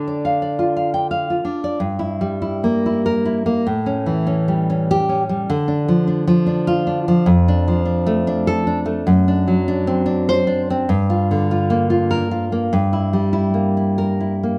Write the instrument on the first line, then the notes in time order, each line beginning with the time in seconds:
nylon-string guitar
Already playing: D3 D4
0.08 D5
0.25 F5
0.42 D5
0.59 F4
0.77 F5
0.94 G5
1.11 F5
1.30 F4
1.45 D4
1.64 D5
1.80 G2
1.99 E4
2.21 G3
2.42 E4
2.64 A#3
2.86 E4
3.06 A#4
3.25 E4
3.46 A#3
3.67 A2
3.86 C#4
4.06 E3
4.27 C#4
4.48 G3
4.70 C#4
4.91 G4
5.09 C#4
5.29 G3
5.50 D3
5.68 D4
5.88 F3
6.08 D4
6.27 F3
6.46 D4
6.67 F4
6.87 D4
7.08 F3
7.26 F2
7.48 D4
7.68 F3
7.85 D4
8.06 A3
8.27 D4
8.47 A4
8.67 D4
8.86 A3
9.07 F#2
9.28 D4
9.48 F#3
9.68 D4
9.87 C4
10.06 D4
10.29 C5
10.47 D4
10.70 C4
10.89 G2
11.10 F4
11.31 D3
11.51 F4
11.70 A#3
11.90 F4
12.11 A#4
12.31 F4
12.52 A#3
12.73 G2
12.93 E4
13.13 G3
13.33 E4
13.54 A#3
13.77 E4
13.98 A#4
14.20 E4
14.43 A#3